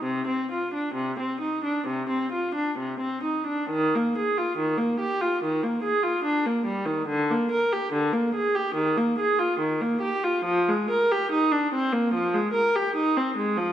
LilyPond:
\new Staff \with { instrumentName = "Viola" } { \time 4/4 \key c \minor \tempo 4 = 72 c16 c'16 f'16 d'16 c16 c'16 ees'16 d'16 c16 c'16 f'16 d'16 c16 c'16 ees'16 d'16 | \key ees \major ees16 bes16 aes'16 f'16 ees16 bes16 g'16 f'16 ees16 bes16 aes'16 f'16 d'16 bes16 g16 ees16 | d16 bes16 bes'16 g'16 d16 bes16 aes'16 g'16 ees16 bes16 aes'16 f'16 ees16 bes16 g'16 f'16 | f16 aes16 bes'16 g'16 ees'16 d'16 c'16 bes16 f16 aes16 bes'16 g'16 ees'16 c'16 aes16 f16 | }